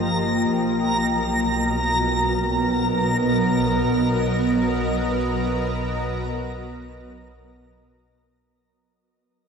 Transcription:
0.00 0.45 G1 medium
0.00 0.49 F3 medium
0.00 0.50 A#3 medium
0.00 0.50 G4 medium
0.00 0.50 D#5 medium
0.00 8.49 A#5 medium
0.49 8.41 B1 medium
0.49 8.46 F#3 medium
1.14 8.44 A#4 medium
1.31 8.45 B3 medium
2.51 8.46 D#5 medium

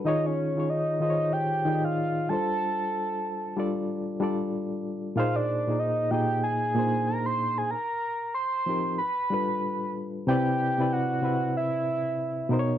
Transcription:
0.05 0.49 D#3 medium
0.05 0.50 D#4 medium
0.05 0.50 F4 medium
0.05 0.51 G#4 medium
0.05 0.51 C#5 loud
0.05 0.28 D#5 medium
0.26 0.71 C#5 medium
0.56 0.96 D#3 medium
0.56 0.96 D#4 soft
0.56 0.97 F4 soft
0.56 0.97 G#4 soft
0.56 0.98 C#5 medium
0.69 1.01 D#5 medium
1.00 1.58 D#3 medium
1.00 1.59 D#4 medium
1.00 1.59 F4 medium
1.00 1.60 G#4 medium
1.00 1.10 C5 medium
1.00 1.34 D#5 medium
1.10 1.63 C#5 medium
1.33 1.86 G5 loud
1.65 2.29 D#3 medium
1.65 2.29 D#4 medium
1.65 2.30 F4 medium
1.65 2.30 G#4 medium
1.65 1.75 D5 medium
1.75 2.34 D#5 medium
1.84 2.31 F5 loud
2.29 3.44 G3 medium
2.29 3.44 D4 medium
2.29 3.45 F4 medium
2.29 3.45 A4 medium
2.29 3.46 C5 medium
2.29 3.57 A5 loud
3.56 4.14 G3 medium
3.56 4.14 D4 medium
3.56 4.15 F4 medium
3.56 4.16 A4 medium
3.56 4.16 D5 medium
4.20 5.07 G3 medium
4.20 5.07 D4 medium
4.20 5.08 F4 medium
4.20 5.08 A4 medium
4.20 5.08 D5 medium
5.16 5.60 A#2 loud
5.16 5.61 A#3 medium
5.16 5.61 D#4 medium
5.16 5.61 G#4 loud
5.16 5.62 C5 loud
5.16 5.37 F5 medium
5.36 5.81 D5 medium
5.67 6.07 A#2 medium
5.67 6.07 A#3 medium
5.67 6.08 D#4 medium
5.67 6.08 G#4 medium
5.67 6.09 A#4 medium
5.79 6.12 D#5 medium
6.11 6.69 A#2 medium
6.11 6.69 A#3 medium
6.11 6.70 D#4 medium
6.11 6.70 G#4 medium
6.11 6.71 D#5 medium
6.11 6.43 G5 loud
6.44 7.09 G#5 loud
6.75 7.71 A#2 medium
6.75 7.71 A#3 medium
6.75 6.84 D4 medium
6.75 7.73 G#4 medium
6.75 7.73 C5 medium
6.83 7.75 D#4 medium
7.07 7.27 A#5 loud
7.26 7.59 C6 loud
7.58 7.72 G#5 medium
7.71 8.34 A#5 loud
8.35 8.95 C6 loud
8.66 8.99 F3 medium
8.66 8.99 C4 medium
8.66 9.00 D#4 medium
8.66 9.00 G4 medium
8.66 9.01 A#4 medium
8.98 9.90 B5 loud
9.30 10.17 G3 medium
9.30 10.18 D4 medium
9.30 10.18 F4 medium
9.30 10.18 A4 medium
9.30 10.19 B4 medium
10.27 10.71 C3 loud
10.27 10.72 C4 medium
10.27 10.72 E4 medium
10.27 10.72 B4 medium
10.27 10.73 D5 loud
10.27 10.94 G5 loud
10.78 11.18 C3 medium
10.78 11.18 C4 medium
10.78 11.19 E4 medium
10.78 11.19 B4 medium
10.78 11.19 D5 medium
10.93 11.55 F#5 loud
11.22 12.37 C3 medium
11.22 12.37 C4 medium
11.22 12.38 E4 medium
11.22 12.39 B4 medium
11.22 12.39 E5 medium
11.57 12.48 E5 medium
12.49 12.78 B2 loud
12.49 12.78 B3 medium
12.49 12.78 D#4 medium
12.49 12.78 A#4 medium
12.49 12.60 C5 medium
12.59 12.78 C#5 loud

